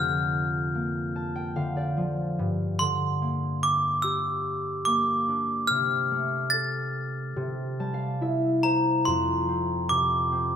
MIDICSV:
0, 0, Header, 1, 3, 480
1, 0, Start_track
1, 0, Key_signature, -1, "major"
1, 0, Tempo, 823045
1, 1392, Time_signature, 4, 2, 24, 8
1, 3316, Tempo, 840336
1, 6100, End_track
2, 0, Start_track
2, 0, Title_t, "Glockenspiel"
2, 0, Program_c, 0, 9
2, 0, Note_on_c, 0, 89, 77
2, 1133, Note_off_c, 0, 89, 0
2, 1628, Note_on_c, 0, 84, 78
2, 2118, Note_on_c, 0, 86, 79
2, 2127, Note_off_c, 0, 84, 0
2, 2346, Note_on_c, 0, 88, 79
2, 2364, Note_off_c, 0, 86, 0
2, 2830, Note_on_c, 0, 86, 74
2, 2847, Note_off_c, 0, 88, 0
2, 3309, Note_on_c, 0, 89, 94
2, 3329, Note_off_c, 0, 86, 0
2, 3781, Note_on_c, 0, 93, 84
2, 3804, Note_off_c, 0, 89, 0
2, 4973, Note_off_c, 0, 93, 0
2, 4999, Note_on_c, 0, 82, 69
2, 5108, Note_off_c, 0, 82, 0
2, 5240, Note_on_c, 0, 84, 82
2, 5720, Note_on_c, 0, 86, 75
2, 5735, Note_off_c, 0, 84, 0
2, 6100, Note_off_c, 0, 86, 0
2, 6100, End_track
3, 0, Start_track
3, 0, Title_t, "Harp"
3, 0, Program_c, 1, 46
3, 0, Note_on_c, 1, 41, 58
3, 0, Note_on_c, 1, 50, 48
3, 0, Note_on_c, 1, 57, 49
3, 0, Note_on_c, 1, 60, 53
3, 272, Note_off_c, 1, 60, 0
3, 436, Note_on_c, 1, 58, 51
3, 471, Note_off_c, 1, 57, 0
3, 674, Note_on_c, 1, 81, 56
3, 790, Note_on_c, 1, 79, 60
3, 903, Note_off_c, 1, 50, 0
3, 909, Note_on_c, 1, 50, 56
3, 910, Note_on_c, 1, 77, 68
3, 1031, Note_on_c, 1, 74, 68
3, 1149, Note_on_c, 1, 53, 48
3, 1394, Note_on_c, 1, 43, 65
3, 1421, Note_off_c, 1, 41, 0
3, 1421, Note_off_c, 1, 50, 0
3, 1421, Note_off_c, 1, 53, 0
3, 1519, Note_off_c, 1, 81, 0
3, 1635, Note_on_c, 1, 50, 52
3, 1696, Note_off_c, 1, 79, 0
3, 1874, Note_off_c, 1, 58, 0
3, 1876, Note_on_c, 1, 58, 55
3, 1880, Note_off_c, 1, 77, 0
3, 2108, Note_off_c, 1, 74, 0
3, 2356, Note_on_c, 1, 67, 57
3, 2836, Note_off_c, 1, 58, 0
3, 2839, Note_on_c, 1, 58, 57
3, 3081, Note_on_c, 1, 62, 45
3, 3324, Note_on_c, 1, 48, 63
3, 3347, Note_off_c, 1, 43, 0
3, 3347, Note_off_c, 1, 50, 0
3, 3560, Note_on_c, 1, 57, 47
3, 3594, Note_off_c, 1, 58, 0
3, 3720, Note_off_c, 1, 67, 0
3, 3797, Note_on_c, 1, 69, 46
3, 4267, Note_off_c, 1, 48, 0
3, 4274, Note_on_c, 1, 48, 58
3, 4521, Note_on_c, 1, 55, 44
3, 4523, Note_on_c, 1, 81, 55
3, 4602, Note_on_c, 1, 77, 59
3, 4684, Note_off_c, 1, 62, 0
3, 4759, Note_on_c, 1, 64, 53
3, 4763, Note_on_c, 1, 76, 63
3, 4794, Note_off_c, 1, 77, 0
3, 5003, Note_on_c, 1, 72, 57
3, 5052, Note_off_c, 1, 69, 0
3, 5250, Note_on_c, 1, 41, 59
3, 5272, Note_off_c, 1, 48, 0
3, 5272, Note_off_c, 1, 55, 0
3, 5285, Note_off_c, 1, 64, 0
3, 5285, Note_off_c, 1, 76, 0
3, 5350, Note_off_c, 1, 81, 0
3, 5461, Note_off_c, 1, 57, 0
3, 5487, Note_on_c, 1, 60, 47
3, 5726, Note_on_c, 1, 48, 47
3, 5961, Note_off_c, 1, 60, 0
3, 5963, Note_on_c, 1, 60, 50
3, 6100, Note_off_c, 1, 41, 0
3, 6100, Note_off_c, 1, 48, 0
3, 6100, Note_off_c, 1, 60, 0
3, 6100, Note_off_c, 1, 72, 0
3, 6100, End_track
0, 0, End_of_file